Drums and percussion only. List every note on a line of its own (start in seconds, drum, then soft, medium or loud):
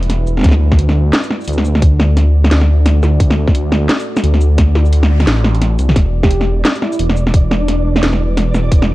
0.03 closed hi-hat soft
0.10 snare medium
0.10 closed hi-hat medium
0.27 shaker medium
0.37 snare soft
0.39 snare soft
0.41 snare soft
0.43 kick loud
0.43 snare soft
0.43 snare medium
0.43 closed hi-hat medium
0.46 snare medium
0.49 snare medium
0.52 snare medium
0.72 kick loud
0.72 snare medium
0.79 closed hi-hat medium
0.89 snare medium
1.13 snare loud
1.13 snare medium
1.13 closed hi-hat medium
1.23 shaker medium
1.31 snare soft
1.41 shaker soft
1.44 closed hi-hat medium
1.44 shaker soft
1.48 shaker soft
1.53 shaker medium
1.58 snare medium
1.65 shaker medium
1.75 snare medium
1.82 kick loud
1.82 closed hi-hat medium
2.00 snare medium
2.17 snare medium
2.17 closed hi-hat medium
2.44 snare medium
2.51 snare loud
2.51 closed hi-hat medium
2.61 snare medium
2.86 snare medium
2.86 closed hi-hat medium
3.03 snare soft
3.03 shaker medium
3.20 kick loud
3.20 closed hi-hat medium
3.30 snare medium
3.48 kick loud
3.48 snare medium
3.55 closed hi-hat medium
3.72 snare medium
3.89 snare loud
3.89 snare medium
3.89 closed hi-hat medium
3.99 shaker medium
4.17 snare medium
4.17 shaker medium
4.24 closed hi-hat medium
4.34 snare medium
4.41 shaker medium
4.58 kick loud
4.58 snare medium
4.58 closed hi-hat medium
4.75 snare medium
4.86 shaker soft
4.93 closed hi-hat medium
5.03 snare medium
5.20 snare medium
5.20 closed hi-hat soft
5.27 snare loud
5.27 closed hi-hat medium
5.44 snare medium
5.55 closed hi-hat soft
5.62 snare medium
5.62 closed hi-hat medium
5.79 closed hi-hat soft
5.79 shaker medium
5.89 snare medium
5.96 kick loud
5.96 snare medium
5.96 closed hi-hat medium
6.23 kick loud
6.23 snare medium
6.31 closed hi-hat medium
6.41 snare medium
6.65 snare loud
6.65 snare medium
6.65 closed hi-hat medium
6.75 shaker medium
6.82 snare medium
6.92 shaker medium
6.99 closed hi-hat medium
7.09 snare medium
7.17 shaker medium
7.27 snare medium
7.34 kick loud
7.34 closed hi-hat medium
7.51 snare medium
7.68 snare medium
7.68 closed hi-hat medium
7.96 snare medium
8.03 snare loud
8.03 closed hi-hat medium
8.13 snare medium
8.37 snare medium
8.37 closed hi-hat medium
8.54 snare medium
8.54 shaker medium
8.72 kick loud
8.72 closed hi-hat medium
8.82 snare medium